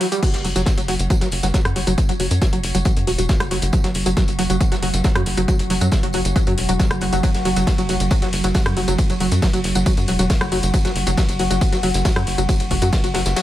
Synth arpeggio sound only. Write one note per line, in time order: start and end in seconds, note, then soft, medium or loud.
0.01 0.07 F#3 medium
0.12 0.21 G3 medium
0.23 0.29 F#3 medium
0.45 0.48 F#3 medium
0.56 0.62 F#3 medium
0.78 0.81 F#3 medium
0.88 0.95 F#3 medium
1.10 1.14 F#3 medium
1.21 1.27 F#3 medium
1.43 1.47 F#3 medium
1.54 1.60 F#3 medium
1.76 1.80 F#3 medium
1.87 1.93 F#3 medium
2.09 2.13 F#3 medium
2.20 2.26 F#3 medium
2.42 2.45 F#3 medium
2.53 2.59 F#3 medium
2.75 2.78 F#3 medium
2.85 2.92 F#3 medium
3.07 3.11 F#3 medium
3.18 3.25 F#3 medium
3.40 3.44 F#3 medium
3.51 3.57 F#3 medium
3.73 3.77 F#3 medium
3.84 3.90 F#3 medium
4.06 4.10 F#3 medium
4.17 4.23 F#3 medium
4.39 4.42 F#3 medium
4.50 4.56 F#3 medium
4.72 4.75 F#3 medium
4.82 4.89 F#3 medium
5.04 5.08 F#3 medium
5.16 5.22 F#3 medium
5.37 5.41 F#3 medium
5.48 5.54 F#3 medium
5.70 5.74 F#3 medium
5.81 5.87 F#3 medium
6.03 6.07 F#3 medium
6.14 6.20 F#3 medium
6.36 6.40 F#3 medium
6.47 6.53 F#3 medium
6.69 6.72 F#3 medium
6.80 6.86 F#3 medium
7.01 7.05 F#3 medium
7.13 7.19 F#3 medium
7.23 7.30 F#3 medium
7.45 7.49 F#3 medium
7.56 7.62 F#3 medium
7.78 7.82 F#3 medium
7.89 7.95 F#3 medium
8.11 8.15 F#3 medium
8.22 8.28 F#3 medium
8.44 8.48 F#3 medium
8.55 8.61 F#3 medium
8.77 8.80 F#3 medium
8.88 8.94 F#3 medium
9.10 9.13 F#3 medium
9.20 9.27 F#3 medium
9.42 9.46 F#3 medium
9.54 9.60 F#3 medium
9.75 9.79 F#3 medium
9.86 9.92 F#3 medium
10.08 10.12 F#3 medium
10.19 10.25 F#3 medium
10.41 10.45 F#3 medium
10.52 10.58 F#3 medium
10.74 10.78 F#3 medium
10.85 10.91 F#3 medium
11.07 11.10 F#3 medium
11.18 11.24 F#3 medium
11.39 11.43 F#3 medium
11.51 11.57 F#3 medium
11.72 11.76 F#3 medium
11.83 11.90 F#3 medium
12.05 12.09 F#3 medium
12.16 12.22 F#3 medium
12.38 12.42 F#3 medium
12.49 12.55 F#3 medium
12.71 12.75 F#3 medium
12.82 12.88 F#3 medium
13.04 13.07 F#3 medium
13.15 13.21 F#3 medium
13.36 13.40 F#3 medium